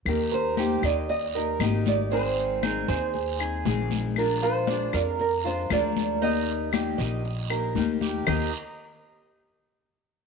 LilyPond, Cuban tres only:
\new Staff \with { instrumentName = "Cuban tres" } { \time 4/4 \key ees \major \tempo 4 = 117 r8 bes'8 g'8 ees''4 bes'8 ees''4 | c'4 ees'8 c''4 aes'4 r8 | r8 f'8 d'8 bes'4 f'8 bes'4 | ees'4 g'8 ees''4 bes'4 g'8 |
<ees' bes' ees''>8 r2. r8 | }